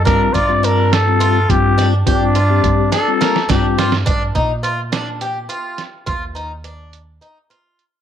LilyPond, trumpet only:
\new Staff \with { instrumentName = "Trumpet" } { \time 7/8 \key g \minor \tempo 4 = 105 bes'8 d''8 bes'8 a'4 g'8. r16 | d'4. a'4 g'8. r16 | r2. r8 | r2. r8 | }